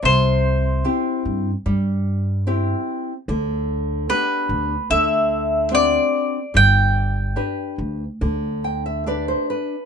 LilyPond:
<<
  \new Staff \with { instrumentName = "Mandolin" } { \time 4/4 \key g \major \tempo 4 = 74 c''4. r2 r8 | r4 b'4 e''4 d''4 | g''4. r2 r8 | }
  \new Staff \with { instrumentName = "Nylon-string guitar" } { \time 4/4 \key g \major << { r1 | r1 | r2 r8 g''16 e''16 d''16 c''16 b'8 | } \\ { c4 <c' e' g'>4 g4 <c' e' g'>4 | d4 <b d' g'>4 d4 <c' d' fis'>4 | g4 <d' g' b'>4 d4 <d' g' b'>4 | } >> }
  \new Staff \with { instrumentName = "Upright bass" } { \clef bass \time 4/4 \key g \major c,4. g,8 g,2 | d,4. d,8 d,2 | g,,4. d,8 d,2 | }
>>